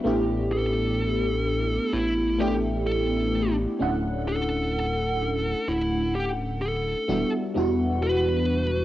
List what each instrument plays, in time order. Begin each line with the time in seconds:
0.04 analog synth bass A1, fm electric piano A3 B3 D4 E4 G4
0.53 lead electric guitar A4
1.93 analog synth bass A1, lead electric guitar E4
2.39 fm electric piano A3 B3 D4 E4 G4, lead electric guitar G4
2.87 lead electric guitar A4
3.79 analog synth bass D1, fm electric piano A3 C#4 D4 E4 F#5
4.28 lead electric guitar A4
5.68 analog synth bass D1, lead electric guitar E4
6.15 lead electric guitar G4
6.62 lead electric guitar A4
7.08 analog synth bass E1, fm electric piano G3 B3 D4 E4 F#4
7.54 analog synth bass E1, fm electric piano G3 B3 D4 E4 F#4
8.03 lead electric guitar B4